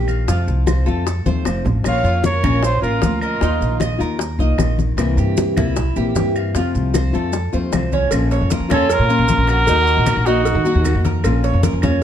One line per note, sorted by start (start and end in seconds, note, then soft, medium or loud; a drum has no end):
0.00 0.25 A#1 medium
0.00 0.27 D#3 soft
0.00 0.27 A#3 soft
0.00 0.27 D#4 medium
0.00 0.28 G4 soft
0.08 0.27 F5 medium
0.08 high conga soft
0.08 claves medium
0.08 maracas soft
0.27 0.46 F2 medium
0.27 0.86 C3 medium
0.27 0.87 F3 medium
0.27 0.86 A3 medium
0.27 0.85 C4 medium
0.27 0.66 F4 medium
0.27 0.86 F4 medium
0.27 high bongo medium
0.27 high conga soft
0.27 maracas medium
0.48 0.85 C2 medium
0.48 high conga soft
0.48 maracas soft
0.67 0.86 C5 medium
0.67 high bongo medium
0.67 high conga medium
0.67 claves medium
0.67 maracas medium
0.86 1.24 F2 medium
0.86 1.05 F3 medium
0.86 1.05 A3 medium
0.86 1.05 C4 medium
0.86 1.05 F4 medium
0.86 1.24 A4 medium
0.86 high bongo soft
0.86 high conga soft
0.86 maracas soft
1.06 muted nylon-string guitar stroke medium
1.06 high bongo medium
1.06 high conga soft
1.06 maracas medium
1.26 1.44 D#2 medium
1.26 1.45 F3 medium
1.26 1.45 A3 medium
1.26 1.45 C4 medium
1.26 1.45 F4 medium
1.26 1.64 C5 medium
1.26 high bongo soft
1.26 high conga medium
1.26 maracas soft
1.45 1.63 F1 medium
1.45 1.83 F3 soft
1.45 1.84 A3 soft
1.45 1.85 C4 medium
1.45 1.85 F4 soft
1.45 high bongo medium
1.45 low bongo medium
1.45 claves medium
1.45 maracas medium
1.65 1.83 A1 medium
1.65 high bongo soft
1.65 low conga medium
1.65 maracas soft
1.84 2.03 A#1 medium
1.84 2.63 F3 medium
1.84 2.45 A#3 medium
1.84 2.43 C#4 medium
1.84 2.43 F4 medium
1.84 2.22 C#5 medium
1.84 2.23 F5 medium
1.84 high bongo medium
1.84 high conga soft
1.84 claves medium
1.84 maracas medium
2.03 2.41 F2 medium
2.03 2.42 F4 medium
2.03 high conga soft
2.03 maracas soft
2.24 2.61 A#4 medium
2.24 2.66 C#5 medium
2.24 high bongo medium
2.24 high conga medium
2.24 maracas medium
2.43 2.81 A#1 loud
2.43 2.63 A#3 medium
2.43 2.82 C#4 medium
2.43 2.63 C#4 medium
2.43 2.62 F4 medium
2.43 high conga medium
2.43 low conga medium
2.43 claves medium
2.43 maracas soft
2.63 2.82 F4 medium
2.63 2.82 C5 medium
2.63 muted nylon-string guitar stroke medium
2.63 high bongo medium
2.63 high conga soft
2.63 maracas medium
2.82 3.01 A1 medium
2.82 3.01 A#3 medium
2.82 3.01 C#4 medium
2.82 3.01 F4 medium
2.82 3.19 F4 medium
2.82 3.21 F4 medium
2.82 3.19 A#4 medium
2.82 high conga soft
2.82 maracas soft
3.02 3.40 D2 medium
3.02 3.40 F3 soft
3.02 3.40 A#3 medium
3.02 3.41 C#4 soft
3.02 3.41 F4 soft
3.02 high bongo medium
3.02 low bongo medium
3.02 high conga medium
3.02 maracas medium
3.21 3.77 F4 medium
3.21 3.77 A#4 medium
3.21 3.41 D#5 medium
3.21 high conga soft
3.21 claves medium
3.21 maracas soft
3.40 3.60 D#2 medium
3.40 3.99 D#3 medium
3.40 4.00 A#3 medium
3.40 3.99 D#4 medium
3.40 3.80 D#4 medium
3.40 3.97 F4 medium
3.40 high bongo medium
3.40 high conga soft
3.40 maracas medium
3.61 3.98 A#1 medium
3.61 high conga soft
3.61 maracas soft
3.80 4.00 D#5 medium
3.80 high bongo medium
3.80 high conga medium
3.80 claves medium
3.80 maracas medium
3.98 4.37 D#2 medium
3.98 4.19 A#3 medium
3.98 4.18 D#4 medium
3.98 4.18 F4 medium
3.98 4.38 A#4 medium
3.98 high bongo soft
3.98 high conga soft
3.98 maracas soft
4.19 muted nylon-string guitar stroke medium
4.19 high bongo medium
4.19 high conga soft
4.19 maracas medium
4.39 4.58 C2 medium
4.39 4.58 A#3 medium
4.39 4.58 D#4 medium
4.39 4.58 F4 medium
4.39 4.78 D#5 medium
4.39 high bongo soft
4.39 high conga soft
4.39 maracas soft
4.58 4.96 A#1 medium
4.58 4.97 D#3 medium
4.58 4.97 A#3 soft
4.58 4.98 D#4 medium
4.58 4.98 F4 medium
4.58 high bongo medium
4.58 low bongo medium
4.58 high conga medium
4.58 claves medium
4.58 maracas medium
4.79 high bongo soft
4.79 high conga medium
4.79 maracas soft
4.97 5.16 C2 medium
4.97 5.56 C3 medium
4.97 5.56 E3 medium
4.97 5.56 A#3 medium
4.97 5.57 C4 medium
4.97 5.55 E4 medium
4.97 high bongo medium
4.97 high conga soft
4.97 claves medium
4.97 maracas medium
5.17 5.55 G2 medium
5.17 5.56 G4 medium
5.17 high conga soft
5.17 maracas soft
5.37 high bongo medium
5.37 high conga loud
5.37 maracas medium
5.56 5.94 C2 medium
5.56 5.77 E3 medium
5.56 5.77 A#3 medium
5.56 5.76 C4 medium
5.56 5.76 E4 medium
5.56 5.95 E4 medium
5.56 high conga loud
5.56 low conga medium
5.56 claves medium
5.56 maracas soft
5.76 muted nylon-string guitar stroke medium
5.76 high bongo medium
5.76 high conga soft
5.76 low conga medium
5.76 maracas medium
5.96 6.14 A#1 medium
5.96 6.15 E3 medium
5.96 6.16 A#3 medium
5.96 6.15 C4 medium
5.96 6.15 E4 medium
5.96 6.34 G4 medium
5.96 high conga soft
5.96 maracas soft
6.15 6.53 G2 medium
6.15 6.55 E3 soft
6.15 6.55 A#3 soft
6.15 6.55 C4 soft
6.15 6.55 E4 medium
6.15 high bongo medium
6.15 low bongo medium
6.15 high conga medium
6.15 maracas medium
6.36 6.55 F5 medium
6.36 high conga soft
6.36 claves medium
6.36 maracas soft
6.55 6.73 F2 medium
6.55 7.13 C3 medium
6.55 7.13 F3 medium
6.55 7.13 A3 medium
6.55 7.12 C4 medium
6.55 6.94 F4 medium
6.55 7.12 F4 medium
6.55 high bongo medium
6.55 high conga soft
6.55 maracas medium
6.75 7.12 C2 loud
6.75 high conga soft
6.75 maracas soft
6.94 7.14 C5 medium
6.94 high bongo medium
6.94 high conga medium
6.94 claves medium
6.94 maracas medium
7.13 7.51 F2 medium
7.13 7.32 F3 medium
7.13 7.32 A3 medium
7.13 7.32 C4 medium
7.13 7.32 F4 medium
7.13 7.52 A4 medium
7.13 high bongo soft
7.13 high conga soft
7.13 maracas soft
7.33 muted nylon-string guitar stroke medium
7.33 high bongo medium
7.33 high conga soft
7.33 maracas medium
7.53 7.72 D#2 medium
7.53 7.71 F3 medium
7.53 7.72 A3 medium
7.53 7.72 C4 medium
7.53 7.72 F4 medium
7.53 7.92 C5 medium
7.53 high bongo soft
7.53 high conga soft
7.53 maracas soft
7.72 8.10 C2 medium
7.72 8.10 F3 soft
7.72 8.11 A3 soft
7.72 8.11 C4 medium
7.72 8.12 F4 soft
7.72 high bongo medium
7.72 low bongo medium
7.72 high conga medium
7.72 claves medium
7.72 maracas medium
7.92 8.12 C#4 medium
7.92 high bongo soft
7.92 high conga medium
7.92 maracas soft
8.11 8.39 A#1 medium
8.11 8.49 F3 medium
8.11 8.50 A#3 medium
8.11 8.50 C#4 medium
8.11 8.51 F4 medium
8.11 cowbell loud
8.11 high conga soft
8.11 claves medium
8.11 maracas medium
8.31 8.51 C#5 medium
8.31 cowbell medium
8.31 high conga soft
8.31 maracas soft
8.41 8.59 F2 medium
8.50 8.69 F3 medium
8.50 8.70 A#3 soft
8.50 8.69 C#4 medium
8.50 8.68 F4 medium
8.50 8.70 A#4 medium
8.50 cowbell medium
8.50 high conga loud
8.50 maracas medium
8.60 8.97 F2 medium
8.69 8.88 A#3 medium
8.69 8.89 C#4 medium
8.69 9.09 C#4 medium
8.69 8.88 F4 medium
8.69 8.90 F4 medium
8.69 cowbell medium
8.69 high conga loud
8.69 low conga medium
8.69 claves medium
8.69 maracas soft
8.73 8.94 A4 loud
8.89 9.49 F4 medium
8.89 9.49 A#4 loud
8.89 muted nylon-string guitar stroke medium
8.89 cowbell loud
8.89 high conga soft
8.89 maracas medium
8.99 9.18 A#2 loud
9.08 9.27 A#3 medium
9.08 9.28 C#4 medium
9.08 9.28 F4 medium
9.08 9.48 A#4 medium
9.08 high conga soft
9.08 maracas soft
9.19 9.38 A#1 loud
9.28 9.67 F3 soft
9.28 9.67 A#3 medium
9.28 9.67 C#4 medium
9.28 9.68 F4 medium
9.28 cowbell medium
9.28 high conga medium
9.28 maracas medium
9.38 9.66 A#1 medium
9.47 9.68 F#4 medium
9.47 10.23 F#4 loud
9.47 10.28 A#4 loud
9.47 cowbell medium
9.47 claves medium
9.47 maracas soft
9.67 9.96 D#2 loud
9.67 10.06 D#3 medium
9.67 10.06 A#3 medium
9.67 10.06 D#4 medium
9.67 10.07 F#4 medium
9.67 cowbell loud
9.67 high conga soft
9.67 maracas medium
9.87 high conga soft
9.87 maracas soft
9.97 10.16 A#1 medium
10.06 10.26 D#3 soft
10.06 10.26 A#3 medium
10.06 10.26 D#4 medium
10.06 10.25 F#4 medium
10.06 10.27 A#4 medium
10.06 cowbell medium
10.06 high conga medium
10.06 claves medium
10.06 maracas medium
10.16 10.54 A#1 medium
10.26 10.45 A#3 medium
10.26 11.05 D#4 medium
10.26 10.45 D#4 medium
10.26 10.65 D#4 medium
10.26 10.45 F#4 medium
10.26 11.05 F#4 medium
10.26 cowbell medium
10.26 high conga soft
10.26 maracas soft
10.45 muted nylon-string guitar stroke medium
10.45 cowbell loud
10.45 high conga soft
10.45 maracas medium
10.55 10.74 D#3 loud
10.65 10.84 A#3 medium
10.65 10.85 D#4 medium
10.65 10.84 F#4 medium
10.65 11.04 F#4 medium
10.65 high conga soft
10.65 maracas soft
10.75 10.94 D#2 loud
10.85 11.23 D#3 medium
10.85 11.23 A#3 medium
10.85 11.24 D#4 medium
10.85 11.24 F#4 medium
10.85 cowbell medium
10.85 high conga medium
10.85 claves medium
10.85 maracas medium
10.95 11.23 F2 medium
11.05 11.43 A#4 medium
11.05 cowbell medium
11.05 high conga medium
11.05 maracas soft
11.23 11.52 A#1 medium
11.23 11.62 F3 medium
11.23 11.62 A#3 medium
11.23 11.63 C#4 medium
11.23 11.63 F4 medium
11.23 cowbell loud
11.23 high conga soft
11.23 claves medium
11.23 maracas medium
11.44 11.63 C#5 medium
11.44 cowbell medium
11.44 high conga soft
11.44 maracas soft
11.53 11.72 F2 loud
11.63 11.82 F3 soft
11.63 11.82 A#3 medium
11.63 11.82 C#4 medium
11.63 11.81 F4 medium
11.63 11.82 A#4 medium
11.63 cowbell medium
11.63 high conga loud
11.63 maracas medium
11.73 12.03 F2 medium
11.82 12.01 A#3 medium
11.82 12.03 C#4 medium
11.82 12.02 C#4 medium
11.82 12.01 F4 medium
11.82 cowbell medium
11.82 high conga loud
11.82 low conga medium
11.82 claves medium
11.82 maracas soft